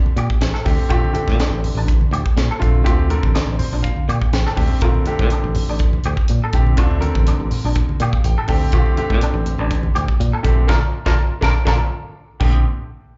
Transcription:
Already playing: grand piano D3 A3 C4 G4
0.05 muted fingered electric bass stroke, high conga
0.16 fingered electric bass A#2, clean electric guitar G4, closed hi-hat
0.30 kick
0.41 fingered electric bass A1, snare, closed hi-hat, low conga
0.54 clean electric guitar A4, snare
0.65 fingered electric bass D2, grand piano D3 A3 C4 G4, kick, snare, open hi-hat, low conga
0.79 high conga
0.89 fingered electric bass A#1, grand piano D3 A3 C4 G4, clean electric guitar F4, kick, closed hi-hat
1.04 high conga
1.13 grand piano D3 A3 C4 G4, muted fingered electric bass stroke, closed hi-hat, low conga
1.28 fingered electric bass A#2, kick, snare, high conga
1.40 clean electric guitar D4, snare, closed hi-hat
1.50 fingered electric bass A1
1.64 open hi-hat, low conga
1.75 fingered electric bass A1, clean electric guitar D4
1.88 kick, closed hi-hat
2.01 high conga
2.11 fingered electric bass D2, clean electric guitar G4, closed hi-hat
2.26 kick
2.37 fingered electric bass A#2, snare, closed hi-hat, low conga
2.50 clean electric guitar A4, muted fingered electric bass stroke
2.59 fingered electric bass A#1, grand piano D3 A3 C4 F4, kick, closed hi-hat, low conga
2.75 high conga
2.84 fingered electric bass D2, grand piano D3 A3 C4 G4, clean electric guitar F4, kick, closed hi-hat
2.99 high conga
3.10 grand piano D3 C4 A4 A#4, closed hi-hat, low conga
3.23 fingered electric bass A1, kick, high conga
3.35 clean electric guitar D4, snare, closed hi-hat
3.48 fingered electric bass A1
3.58 grand piano C5, open hi-hat, high conga, low conga
3.72 fingered electric bass A#1, clean electric guitar D4
3.83 grand piano F5, kick, closed hi-hat
3.96 muted fingered electric bass stroke, high conga
4.09 fingered electric bass A#2, clean electric guitar G4, closed hi-hat
4.22 kick
4.33 fingered electric bass A1, grand piano G5, snare, closed hi-hat, low conga
4.46 clean electric guitar A4, snare, high conga
4.56 fingered electric bass D2, grand piano D3 A3 C4 G4, kick, open hi-hat, low conga
4.70 low conga
4.81 fingered electric bass A#1, grand piano D3 A3 C4 A#4, clean electric guitar F4, kick, closed hi-hat
4.94 high conga
5.06 grand piano D3 A3 C4 G4, muted fingered electric bass stroke, closed hi-hat, low conga
5.19 fingered electric bass A#2, kick, high conga
5.30 clean electric guitar D4, closed hi-hat
5.44 fingered electric bass A1
5.55 open hi-hat, low conga
5.69 fingered electric bass A1, clean electric guitar D4
5.79 kick, closed hi-hat
5.93 high conga
6.04 fingered electric bass D2, clean electric guitar G4, closed hi-hat
6.17 kick
6.28 fingered electric bass A#2, closed hi-hat, low conga
6.42 clean electric guitar A4, muted fingered electric bass stroke
6.53 fingered electric bass A#1, grand piano D3 A3 C4 G4, kick, closed hi-hat, low conga
6.66 high conga
6.77 fingered electric bass D2, grand piano D3 A3 C4 D4, clean electric guitar F4, kick, closed hi-hat
6.91 high conga
7.01 grand piano D3 C4 A4 A#4, closed hi-hat
7.15 fingered electric bass A1, kick, high conga
7.27 clean electric guitar D4, closed hi-hat
7.40 fingered electric bass A1
7.51 open hi-hat, low conga
7.64 fingered electric bass A#1, clean electric guitar D4
7.75 kick, closed hi-hat
7.89 muted fingered electric bass stroke, high conga
8.00 fingered electric bass A#2, clean electric guitar G4, grand piano F5, closed hi-hat
8.13 kick
8.24 fingered electric bass A1, grand piano G5, closed hi-hat, low conga
8.38 clean electric guitar A4
8.48 fingered electric bass D2, grand piano D3 A3 C4 G4 G5, kick, open hi-hat, low conga
8.62 high conga
8.72 fingered electric bass A#1, grand piano D3 A3 C4 G4, clean electric guitar F4, kick, closed hi-hat
8.86 high conga
8.97 grand piano D3 A3 C4 G4, muted fingered electric bass stroke, closed hi-hat, low conga
9.10 fingered electric bass A#2, kick, high conga
9.21 clean electric guitar D4, closed hi-hat
9.34 fingered electric bass A1
9.46 closed hi-hat, low conga
9.58 fingered electric bass A1, clean electric guitar D4
9.71 kick, closed hi-hat
9.83 high conga
9.95 fingered electric bass D2, clean electric guitar G4, closed hi-hat
10.08 kick
10.20 fingered electric bass A#2, closed hi-hat, low conga
10.33 clean electric guitar A4, muted fingered electric bass stroke
10.43 fingered electric bass A#1, grand piano D3 A3 C4 G4, kick, closed hi-hat, low conga
10.67 fingered electric bass A#1, grand piano A3 A#3 D4, clean electric guitar F4 A4 A#4, kick, snare, high conga
11.06 fingered electric bass A#1, grand piano A3 A#3 D4, clean electric guitar F4 A4 A#4, kick, snare, high conga
11.41 fingered electric bass A#1, grand piano A3 A#3 D4, clean electric guitar F4 A4 A#4, kick, snare, high conga
11.65 fingered electric bass A#1, grand piano A3 A#3 D4, clean electric guitar F4 A4 A#4, kick, snare, high conga
12.40 fingered electric bass A#1, grand piano D3 A3 C4 G4, clean electric guitar A#3, kick, crash, high conga

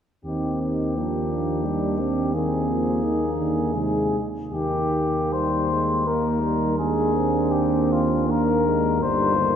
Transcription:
0.25 tuba D#2, trombone D#3, euphonium C4, french horn section D#4, cornet G4
0.62 cornet G4
0.96 trombone F3, euphonium A#3, french horn section D4
1.65 trombone D#3, euphonium G3
1.99 euphonium C4
2.34 trombone D#3, euphonium A#3, french horn section C4, cornet G#4
2.67 trombone F3
3.03 trombone D#3, french horn section D#4
3.37 trombone D3
3.74 trombone C3, euphonium G#3, french horn section D#4, cornet G#4
4.52 tuba D#2, trombone A#3, euphonium A#3, french horn section D#4, cornet G4
5.33 trombone G3, cornet C5
5.71 trombone G#3
6.06 trombone A#3, euphonium A#3, french horn section D#4, cornet A#4
6.42 trombone G3
6.77 trombone G#3, euphonium A#3, french horn section D4, cornet G#4
7.14 trombone C4
7.51 cornet G4
7.92 cornet F4
8.28 trombone A#3, euphonium A#3, french horn section D4, cornet A#4
8.66 trombone G#3
9.01 tuba G1, trombone G3, euphonium A#3, french horn section D#4, cornet C5
9.36 trombone D#3

